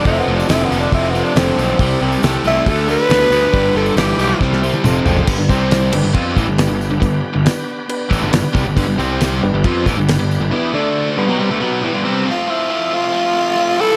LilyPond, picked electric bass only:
\new Staff \with { instrumentName = "Picked electric bass" } { \clef bass \time 4/4 \key g \mixolydian \tempo 4 = 138 f,,8 f,,8 f,,8 f,,8 f,,4 f,,8 b,,8 | c,8 c,8 c,8 c,8 d,4 d,8 d,8 | g,,8 g,,8 g,,8 b,,8 c,4 f,,8 fis,,8 | g,,16 g,,16 c,4 g,,16 g,,16 f,8 a,,16 g,,8 g,,8 g,,16 |
g,,8 r16 g,,16 r4. a,,16 g,,16 g,,16 r16 c,16 g,,16 | g,,16 g,,16 c,4 g,,16 g,,16 f,8 a,,16 g,,8 g,,8 g,,16 | r1 | r1 | }